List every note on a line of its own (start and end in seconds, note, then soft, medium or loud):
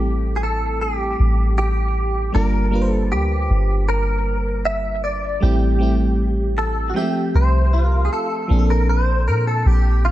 0.00 1.15 A1 loud
0.00 2.32 G3 medium
0.00 2.36 A3 medium
0.00 2.36 C4 medium
0.00 2.36 E4 medium
0.00 0.36 G4 medium
0.00 2.37 A4 medium
0.36 0.43 G#4 medium
0.43 0.81 A4 medium
0.81 1.57 G4 medium
1.19 2.31 A1 medium
1.58 2.34 G4 medium
2.32 3.13 G1 loud
2.32 2.65 G3 medium
2.32 2.66 A#3 medium
2.32 2.66 D4 medium
2.32 2.67 F4 medium
2.32 2.90 A#4 medium
2.37 2.67 A#4 medium
2.71 3.98 G3 medium
2.71 3.98 A#3 medium
2.71 3.99 D4 medium
2.71 3.99 F4 medium
2.75 2.81 B4 medium
2.82 4.03 C5 medium
2.90 3.11 A4 medium
3.12 3.48 D2 medium
3.12 3.88 G4 medium
3.50 5.38 G1 loud
3.89 4.65 A#4 medium
4.65 5.01 E5 loud
5.04 5.43 D5 medium
5.40 6.92 A1 loud
5.40 5.73 G3 medium
5.40 5.73 A3 medium
5.40 5.74 C4 medium
5.40 5.74 E4 medium
5.40 6.61 G4 medium
5.45 5.75 G4 medium
5.79 6.95 G3 medium
5.79 6.96 A3 medium
5.79 6.95 C4 medium
5.79 6.97 E4 medium
5.83 6.97 G4 medium
6.58 6.90 A4 medium
6.90 6.96 F#4 medium
6.94 8.21 F3 medium
6.94 7.02 G#3 medium
6.94 8.22 C4 medium
6.94 7.69 G4 medium
6.94 8.22 E5 medium
6.98 8.24 A3 medium
6.98 8.23 G4 medium
7.35 8.08 C2 loud
7.35 7.88 C5 medium
7.73 8.27 F4 medium
7.88 8.04 A#4 medium
8.05 8.12 G#4 medium
8.13 8.70 A4 medium
8.48 9.29 A#1 loud
8.48 9.75 F3 medium
8.48 9.75 A#3 medium
8.48 9.76 C4 medium
8.48 9.76 D4 medium
8.52 8.58 G#4 medium
8.59 9.80 A4 medium
8.70 8.89 A#4 medium
8.89 9.27 C5 medium
9.27 9.64 A#2 loud
9.27 9.47 A#4 medium
9.47 9.66 A4 medium
9.65 10.11 A#1 loud
9.65 10.05 G4 medium
10.05 10.11 F4 medium